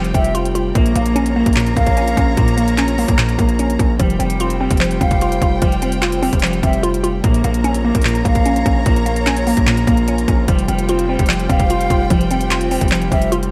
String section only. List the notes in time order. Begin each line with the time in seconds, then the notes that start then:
Already playing: F4 C5 G5
0.75 F4 C#5 A#5
3.99 F4 C5 G5
7.24 F4 C#5 A#5
10.48 C5 G5